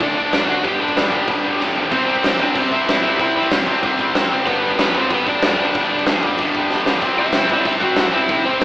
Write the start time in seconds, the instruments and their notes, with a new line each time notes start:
0.00 picked electric bass D2, distorted electric guitar D3 A3 D4, overdriven electric guitar D4 D5, kick, crash
0.15 picked electric bass D2, distorted electric guitar D3 A3 D4, overdriven electric guitar D4 D5
0.31 picked electric bass F#2, distorted electric guitar D3 A3 D4, snare, crash
0.47 picked electric bass D2, distorted electric guitar D3 A3 D4, overdriven electric guitar F#4 F#5
0.63 picked electric bass G1, distorted electric guitar G2 D3 G3, overdriven electric guitar G4 G5, kick, crash
0.79 picked electric bass G1, distorted electric guitar G2 D3 G3, overdriven electric guitar D4 D5
0.88 kick
0.95 picked electric bass G1, distorted electric guitar G2 D3 G3, snare, crash
1.11 picked electric bass G1, distorted electric guitar G2 D3 G3, kick
1.28 picked electric bass G1, distorted electric guitar G2 D3 G3, kick, crash
1.44 picked electric bass G1, distorted electric guitar G2 D3 G3
1.60 picked electric bass G1, distorted electric guitar G2 D3 G3, snare
1.75 picked electric bass B1, distorted electric guitar G2 D3 G3, floor tom
1.91 picked electric bass C2, distorted electric guitar C3 G3 C4, overdriven electric guitar C4, kick, crash
1.96 overdriven electric guitar C5
2.06 distorted electric guitar C3 G3 C4
2.16 kick
2.23 picked electric bass C2, distorted electric guitar C3 G3 C4, overdriven electric guitar C4 C5, snare, crash
2.39 picked electric bass C2, distorted electric guitar C3 G3 C4, overdriven electric guitar D4 D5, kick
2.55 picked electric bass C2, distorted electric guitar C3 G3 C4, overdriven electric guitar C4 C5, kick, crash
2.72 distorted electric guitar C3 G3 C4, overdriven electric guitar E4 E5, kick
2.87 picked electric bass A1, distorted electric guitar C3 G3 C4, snare, crash
3.03 picked electric bass G2, distorted electric guitar C3 G3 C4, overdriven electric guitar E4 E5
3.20 picked electric bass C2, distorted electric guitar C3 G3 C4, kick, crash
3.36 picked electric bass G1, distorted electric guitar C3 G3 C4
3.43 kick
3.51 picked electric bass C2, distorted electric guitar C3 G3 C4, snare, crash
3.67 picked electric bass C2, distorted electric guitar C3 G3 C4, kick
3.83 picked electric bass C2, distorted electric guitar C3 G3 C4, kick, crash
3.99 picked electric bass A2, distorted electric guitar C3 G3 C4, kick
4.15 picked electric bass G2, distorted electric guitar C3 G3 C4, snare, crash
4.31 picked electric bass F#1, distorted electric guitar C3 G3 C4
4.45 picked electric bass G1, distorted electric guitar G2 D3 G3, overdriven electric guitar B3 B4, kick, crash
4.61 distorted electric guitar G2 D3 G3
4.71 kick
4.78 picked electric bass G1, distorted electric guitar G2 D3 G3, overdriven electric guitar B4, snare, crash
4.82 overdriven electric guitar B3
4.95 picked electric bass G1, distorted electric guitar G2 D3 G3, overdriven electric guitar C4 C5, kick
5.10 picked electric bass G1, distorted electric guitar G2 D3 G3, overdriven electric guitar B3 B4, kick, crash
5.27 distorted electric guitar G2 D3 G3, overdriven electric guitar D4 D5, kick
5.42 picked electric bass E1, distorted electric guitar G2 D3 G3, snare, crash
5.59 picked electric bass D2, distorted electric guitar G2 D3 G3, overdriven electric guitar D4 D5
5.74 picked electric bass G1, distorted electric guitar G2 D3 G3, kick, crash
5.92 picked electric bass D2, distorted electric guitar G2 D3 G3
5.99 kick
6.06 picked electric bass G1, distorted electric guitar G2 D3 G3, snare, crash
6.23 picked electric bass G1, distorted electric guitar G2 D3 G3, kick
6.38 picked electric bass G1, distorted electric guitar G2 D3 G3, kick, crash
6.54 picked electric bass E2, distorted electric guitar G2 D3 G3, kick
6.70 picked electric bass D2, distorted electric guitar G2 D3 G3, snare
6.86 picked electric bass G1, distorted electric guitar G2 D3 G3, snare
7.01 picked electric bass C2, distorted electric guitar C3 G3 C4, kick, crash
7.19 distorted electric guitar C3 G3 C4, overdriven electric guitar E4 E5
7.26 kick
7.32 picked electric bass C2, distorted electric guitar C3 G3 C4, snare, crash
7.50 picked electric bass C2, distorted electric guitar C3 G3 C4, kick
7.65 picked electric bass C2, distorted electric guitar C3 G3 C4, overdriven electric guitar E4 E5, kick, crash
7.81 distorted electric guitar C3 G3 C4, overdriven electric guitar F#4 F#5, kick
7.96 picked electric bass A1, distorted electric guitar C3 G3 C4, overdriven electric guitar F#4 F#5, snare, crash
8.14 picked electric bass G2, distorted electric guitar C3 G3 C4, overdriven electric guitar E4 E5
8.28 picked electric bass C2, distorted electric guitar C3 G3 C4, kick, crash
8.45 picked electric bass G1, distorted electric guitar C3 G3 C4, overdriven electric guitar C4 C5
8.53 kick
8.61 distorted electric guitar C3 G3, crash